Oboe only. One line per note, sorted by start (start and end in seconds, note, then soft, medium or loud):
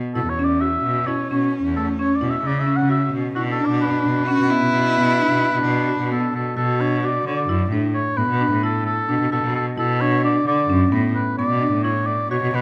0.15 0.31 A4 medium
0.30 0.46 C#5 medium
0.45 0.62 D5 medium
0.61 1.09 E5 medium
1.07 1.29 C#5 medium
1.30 1.51 C#5 medium
1.76 1.86 A4 medium
2.00 2.18 C#5 medium
2.16 2.32 D5 medium
2.30 2.49 E5 medium
2.47 2.62 D5 medium
2.60 2.78 E5 medium
2.76 2.90 F#5 medium
2.91 3.12 E5 medium
3.35 3.43 F#4 medium
3.51 3.68 A4 medium
3.66 3.81 D5 medium
3.82 6.07 B4 loud
6.12 6.33 A4 medium
6.36 6.56 A4 medium
6.57 6.82 A4 medium
6.81 7.07 C#5 medium
7.05 7.27 D5 medium
7.27 7.69 D5 medium
7.94 8.19 C#5 medium
8.17 8.63 B4 medium
8.64 8.85 A4 medium
8.86 9.29 A4 medium
9.32 9.53 A4 medium
9.56 9.66 A4 medium
9.78 10.02 A4 medium
10.01 10.24 C#5 medium
10.25 10.46 D5 medium
10.48 10.90 D5 loud
11.15 11.37 B4 medium
11.38 11.81 D5 loud
11.84 12.08 C#5 medium
12.06 12.30 D5 loud
12.31 12.57 C#5 medium
12.55 12.62 B4 medium